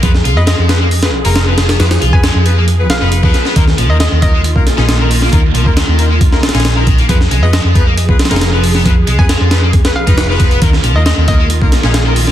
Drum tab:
HH |x---x---x---x---o-x---o-x---x-x-|x-x-x---x---x---x---x---x---x---|x---x---x---x---x---x---x---o---|x---x---x---x---x---xxxxx---x-x-|
SD |--o-----o---o-----o-----o---o-o-|o-o-----o-----------o-------o-o-|--o-----o-----------o-o-o-----o-|--------o---------o-ooooo-------|
BD |o-------------------------------|------o-------------------o-----|o-----------o-----o-------------|o-----o---------o-----------o---|

HH |x---x---x---x---x---xxxxx---o---|x---x---x---x---x-x---x-x---x-x-|x---x---x---x---x---x---x---o---|
SD |--o-----o-----------ooooo-----o-|--------o---o-----o-----o-------|--o-----o-----------o-o-o-----o-|
BD |o-----------o-----o-------------|o-----o---------o-----o-----o---|o-----------o-----o-------------|